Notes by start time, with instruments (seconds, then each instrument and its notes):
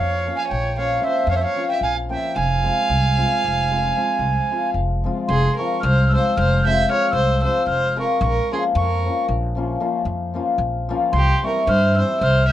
Already playing: upright bass F2, hammered dulcimer F3, violin C#5, accordion F5
0.26 hammered dulcimer F3 A#3 C#4 F4
0.37 violin F5, accordion G#5
0.48 upright bass A#1, violin C#5, accordion G5
0.77 hammered dulcimer F3 A#3 C#4 F4, violin C#5, accordion F5
1.01 hammered dulcimer F3 A#3 C#4 F4, accordion E5
1.07 violin C5
1.27 upright bass F2, accordion F5
1.31 violin C#5
1.35 violin C5, accordion E5
1.43 violin C#5, accordion F5
1.55 hammered dulcimer F3 A#3 C#4 F4
1.69 violin E5, accordion G5
1.81 upright bass A#1, violin F5, accordion G#5
2.09 hammered dulcimer F3 A#3 C#4 F4, accordion G5
2.14 violin E5
2.36 upright bass F1, violin F5, accordion G#5
2.63 hammered dulcimer F3 G#3 C4 F4
2.89 upright bass C2
3.17 hammered dulcimer F3 G#3 C4 F4
3.44 upright bass F1
3.71 hammered dulcimer F3 G#3 C4 F4
3.96 hammered dulcimer F3 G#3 C4 F4
4.19 upright bass C2
4.51 hammered dulcimer F3 G#3 C4 F4
4.74 upright bass F1
5.04 hammered dulcimer F3 G#3 C4 F4
5.28 upright bass F1, violin G#4, accordion C6
5.57 hammered dulcimer F3 G#3 C4 F4, violin A#4, accordion C#6
5.81 upright bass C2, violin C5, accordion F6
6.09 hammered dulcimer F3 G#3 F4, accordion E6
6.14 hammered dulcimer C4, violin C5
6.37 upright bass F1, violin C5, accordion F6
6.63 hammered dulcimer F3 G#3 C4, accordion G6
6.67 hammered dulcimer F4, violin E5
6.90 hammered dulcimer F3 G#3 C4 F4, violin C#5, accordion F6
7.11 upright bass C2, violin C5, accordion E6
7.41 hammered dulcimer F3 G#3 C4 F4, violin C5, accordion E6
7.67 upright bass F1, violin C5, accordion F6
7.96 hammered dulcimer F3 G#3 C4 F4
8.00 violin A#4, accordion C#6
8.21 upright bass A#1, accordion C#6
8.27 violin A#4
8.51 hammered dulcimer F3 A#3 C#4 F4, violin G#4, accordion C6
8.75 upright bass F2, violin A#4, accordion C#6
9.04 hammered dulcimer F3 A#3 C#4 F4
9.28 upright bass A#1
9.55 hammered dulcimer F3 A#3 C#4 F4
9.80 hammered dulcimer F3 A#3 C#4 F4
10.05 upright bass F2
10.34 hammered dulcimer F3 A#3 C#4 F4
10.58 upright bass A#1
10.89 hammered dulcimer F3 A#3 C#4 F4
11.13 upright bass C2, accordion C6
11.17 violin G4
11.42 hammered dulcimer E3 G3 C4 E4, accordion C#6
11.47 violin A#4
11.67 upright bass G2, violin C5, accordion F6
11.96 hammered dulcimer E3 G3 C4 E4, violin C5, accordion E6
12.21 upright bass C2, violin C5, accordion F6
12.49 violin E5